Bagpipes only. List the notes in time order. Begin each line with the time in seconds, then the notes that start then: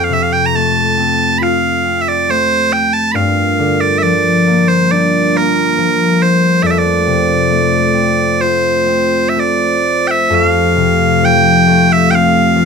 0.04 F5
0.13 E5
0.23 F5
0.33 G5
0.46 A#5
0.56 A5
1.38 B5
1.43 F5
2.01 E5
2.08 D5
2.31 C5
2.73 G5
2.93 A5
3.12 F5 B5
3.81 D5
3.98 E5
4.03 D5
4.68 C5
4.91 D5
5.37 A#4
6.22 C5
6.63 D5 E5
6.71 E5
6.78 D5
8.41 C5
9.29 E5
9.40 D5
10.07 E5 G5
10.35 F5
11.25 G5
11.92 E5
12.11 G5
12.15 F5